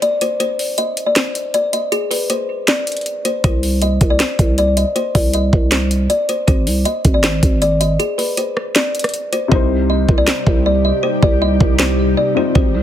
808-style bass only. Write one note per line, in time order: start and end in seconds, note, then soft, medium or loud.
3.44 3.99 C2 loud
4.01 4.19 C2 loud
4.39 4.85 C2 loud
5.15 5.51 C2 loud
5.53 6.08 C2 loud
6.48 6.68 G#1 loud
6.67 6.85 C2 loud
7.05 7.41 G#1 loud
7.43 7.97 G#1 loud
9.52 10.06 C2 loud
10.09 10.27 C2 loud
10.47 10.92 C2 loud
11.23 11.59 C2 loud
11.60 12.15 C2 loud
12.55 12.76 G#1 loud
12.74 12.83 C2 loud